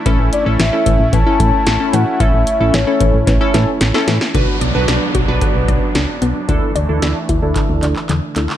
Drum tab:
HH |x-x-x-x-x-x-x-x-|x-x-x-x-x-x-x-x-|x-x-x-x-x-x-x-x-|x-x-x-x-x-x-x-x-|
CP |----------------|----------------|----------------|--------x-xxx-xx|
SD |----o-------o---|----o---o-o-oooo|----o-------o---|----o-----------|
BD |o-----o-o-o-----|o-----o-o-------|o-----o-o-o-----|o-----o-o-------|